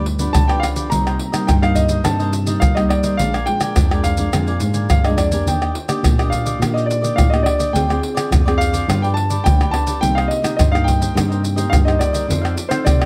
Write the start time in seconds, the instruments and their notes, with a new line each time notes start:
Already playing: tine electric piano D2, nylon-string guitar G2
0.06 muted cavaquinho stroke, pandeiro
0.19 nylon-string guitar F3 B3 D4, cavaquinho G4 B4 D5, pandeiro, maracas
0.33 tine electric piano C#2, nylon-string guitar D3, grand piano A5, pandeiro, tamborim, maracas, surdo
0.48 nylon-string guitar F3 B3 D4, cavaquinho G4 B4 D5, grand piano G5, pandeiro, tamborim, maracas
0.60 grand piano F5, pandeiro, tamborim, maracas
0.76 cavaquinho G4 B4 D5, pandeiro, maracas
0.90 tine electric piano C2, nylon-string guitar C3 G3 A#3 D#4, cavaquinho D#4 A#4 C5 D#5, grand piano A#5, pandeiro, maracas, surdo
1.05 cavaquinho A#4 C5 D#5, pandeiro, tamborim, maracas
1.19 muted cavaquinho stroke, pandeiro
1.32 nylon-string guitar G3 A#3 D#4, cavaquinho A#4 C5 D#5, pandeiro, tamborim, maracas
1.47 nylon-string guitar G2, tine electric piano G2, cavaquinho D#4 A#4 C5 D#5, grand piano G5, pandeiro, tamborim, maracas, surdo
1.62 nylon-string guitar G3 A#3 D#4, cavaquinho A#4 C5 D#5, grand piano F5, pandeiro, tamborim, maracas
1.75 grand piano D#5, pandeiro, maracas, surdo
1.89 cavaquinho A#4 C5 D#5, pandeiro, maracas
2.03 tine electric piano G2, nylon-string guitar C3 G3 A#3 D#4, cavaquinho D#4 A#4 C5 D#5, grand piano A5, pandeiro, tamborim, maracas, surdo
2.19 cavaquinho A#4 C5 D#5, pandeiro, maracas
2.33 muted cavaquinho stroke, pandeiro, maracas
2.46 nylon-string guitar G3 A#3 D#4, cavaquinho A#4 C5 D#5, pandeiro, maracas
2.60 tine electric piano C2, nylon-string guitar G2, grand piano F5, pandeiro, tamborim, maracas, surdo
2.75 nylon-string guitar G3 A#3 D#4, cavaquinho A#4 C5 D#5, grand piano D#5, pandeiro, tamborim, maracas
2.89 grand piano D5, pandeiro, tamborim
3.04 cavaquinho A#4 C5 D#5, pandeiro, maracas
3.17 tine electric piano A#1, nylon-string guitar A#2 F3 G#3 D4, cavaquinho D4 A#4 D5, grand piano F5, pandeiro, maracas, surdo
3.21 cavaquinho G#5
3.34 cavaquinho A#4 D5 G#5, pandeiro, tamborim, maracas
3.46 nylon-string guitar F3 G#3 D4, grand piano G5, muted cavaquinho stroke, pandeiro
3.61 cavaquinho A#4 D5 G#5, pandeiro, tamborim, maracas
3.76 tine electric piano F2, nylon-string guitar F2, cavaquinho D4 A#4 D5 G#5, pandeiro, tamborim, maracas, surdo
3.90 nylon-string guitar F3 G#3 D4, cavaquinho A#4 D5 G#5, pandeiro, tamborim, maracas
4.04 grand piano F5, pandeiro, maracas, surdo
4.17 nylon-string guitar F3 G#3 D4, cavaquinho A#4 D5 G#5, pandeiro, maracas
4.33 tine electric piano F2, nylon-string guitar A#2 F3 G#3 D4, cavaquinho D4 A#4 D5 G#5, pandeiro, tamborim, maracas, surdo
4.47 cavaquinho A#4 D5 G#5, pandeiro, maracas
4.60 tine electric piano G#2, nylon-string guitar F3 G#3 D4, muted cavaquinho stroke, pandeiro, maracas
4.74 cavaquinho A#4 D5 G#5, pandeiro, maracas
4.90 tine electric piano G2, grand piano F5, pandeiro, tamborim, maracas, surdo
5.04 nylon-string guitar F3 G#3 D4, cavaquinho A#4 D5 G#5, grand piano D#5, pandeiro, tamborim, maracas
5.17 tine electric piano F2, grand piano D5, pandeiro, tamborim, maracas
5.31 nylon-string guitar A#3 D4 G4, cavaquinho A#4 D5 G#5, pandeiro, maracas
5.46 tine electric piano D#2, nylon-string guitar D#3, cavaquinho D4 G4 D5 D#5, grand piano G5, pandeiro, maracas, surdo
5.61 cavaquinho G4 D5 D#5, pandeiro, tamborim, maracas
5.75 muted cavaquinho stroke, pandeiro
5.88 nylon-string guitar A#3 D4 G4, cavaquinho G4 D5 D#5, pandeiro, tamborim, maracas
6.03 tine electric piano A#2, nylon-string guitar A#2, cavaquinho D4 G4 D5 D#5, pandeiro, tamborim, maracas, surdo
6.18 nylon-string guitar A#3 D4 G4, cavaquinho G4 D5 D#5, pandeiro, tamborim, maracas
6.30 grand piano F5, pandeiro, maracas, surdo
6.45 cavaquinho G4 D5 D#5, pandeiro, maracas
6.60 tine electric piano A#2, nylon-string guitar D#3 A#3 D4 G4, cavaquinho D4 G4 D5 D#5, pandeiro, tamborim, maracas, surdo
6.74 cavaquinho G4 D5 D#5, grand piano D#5, pandeiro, maracas
6.86 grand piano D5, muted cavaquinho stroke
6.91 pandeiro, maracas
7.01 nylon-string guitar A#3 D4 G4, cavaquinho G4 D5 D#5, pandeiro, maracas
7.16 tine electric piano A2, nylon-string guitar A#2, grand piano F5, pandeiro, tamborim, maracas, surdo
7.30 nylon-string guitar A#3 D4 G4, cavaquinho G4 D5 D#5, grand piano D#5, pandeiro, tamborim, maracas
7.43 grand piano D5, pandeiro, tamborim
7.58 cavaquinho G4 D5 D#5, pandeiro, maracas
7.73 tine electric piano D2, nylon-string guitar D3 C4 F4 G#4, cavaquinho F4 G#4 C5 D5, grand piano G5, pandeiro, maracas, surdo
7.88 nylon-string guitar C4 F4 G#4, cavaquinho G#4 C5 D5, pandeiro, tamborim, maracas
8.01 muted cavaquinho stroke, pandeiro
8.14 cavaquinho G#4 C5 D5, pandeiro, tamborim, maracas
8.30 tine electric piano F2, nylon-string guitar D3, cavaquinho F4 G#4 C5 D5, pandeiro, tamborim, maracas, surdo
8.45 nylon-string guitar C4 F4 G#4, cavaquinho G#4 C5 D5, pandeiro, tamborim, maracas
8.58 grand piano F5, pandeiro, maracas
8.72 cavaquinho G#4 C5 D5, pandeiro, maracas
8.88 tine electric piano G2, nylon-string guitar G2 F3 B3 D4, cavaquinho F4 G4 B4 D5, pandeiro, tamborim, maracas, surdo
9.02 cavaquinho G4 B4 D5, grand piano G5, pandeiro, maracas
9.14 grand piano A5, muted cavaquinho stroke, pandeiro
9.30 cavaquinho G4 B4 D5, pandeiro, maracas
9.44 tine electric piano D2, nylon-string guitar D3 F3 B3 D4, grand piano G5, pandeiro, tamborim, maracas, surdo
9.60 cavaquinho G4 B4 D5, pandeiro, tamborim, maracas
9.71 nylon-string guitar F3 B3 D4, grand piano A5, pandeiro, tamborim
9.87 cavaquinho G4 B4 D5, pandeiro, maracas
10.01 tine electric piano C2, nylon-string guitar C3 A#3 D#4 G4, cavaquinho D#4 A#4 C5 D#5, grand piano G5, pandeiro, maracas, surdo
10.15 cavaquinho A#4 C5 D#5, grand piano F5, pandeiro, tamborim, maracas
10.28 grand piano D#5, muted cavaquinho stroke, pandeiro
10.42 nylon-string guitar A#3 D#4 G4, cavaquinho A#4 C5 D#5, pandeiro, tamborim, maracas
10.57 nylon-string guitar G2, tine electric piano G2, cavaquinho D#4 A#4 C5 D#5, grand piano D#5, pandeiro, tamborim, maracas, surdo
10.72 nylon-string guitar A#3 D#4 G4, cavaquinho A#4 C5 D#5, grand piano F5, pandeiro, tamborim, maracas
10.84 grand piano G5, pandeiro, maracas, surdo
11.00 cavaquinho A#4 C5 D#5, pandeiro, maracas
11.14 tine electric piano G2, nylon-string guitar C3 A#3 D#4 G4, cavaquinho D#4 A#4 C5 D#5, pandeiro, tamborim, maracas, surdo
11.29 cavaquinho A#4 C5 D#5, pandeiro, maracas
11.42 muted cavaquinho stroke, pandeiro, maracas
11.55 nylon-string guitar A#3 D#4 G4, cavaquinho A#4 C5 D#5, pandeiro, maracas
11.70 nylon-string guitar G2, tine electric piano G2, grand piano F5, pandeiro, tamborim, maracas, surdo
11.85 nylon-string guitar A#3 D#4 G4, cavaquinho A#4 C5 D#5, grand piano D#5, pandeiro, tamborim, maracas
11.99 grand piano D5, pandeiro, tamborim, maracas
12.13 cavaquinho A#4 C5 D#5, pandeiro, maracas
12.27 tine electric piano F2, nylon-string guitar F3 C4 D#4 A4, cavaquinho D#4 A4 C5 F5, pandeiro, maracas, surdo
12.41 cavaquinho A4 C5 F5, pandeiro, tamborim, maracas
12.55 muted cavaquinho stroke, pandeiro, maracas
12.69 nylon-string guitar C4 D#4 A4, cavaquinho A4 C5 F5, grand piano C5, pandeiro, tamborim, maracas
12.85 nylon-string guitar C3, tine electric piano C3, cavaquinho D#4 A4 C5 F5, grand piano D5, pandeiro, tamborim, maracas, surdo
12.99 cavaquinho A4 C5 F5, pandeiro, tamborim, maracas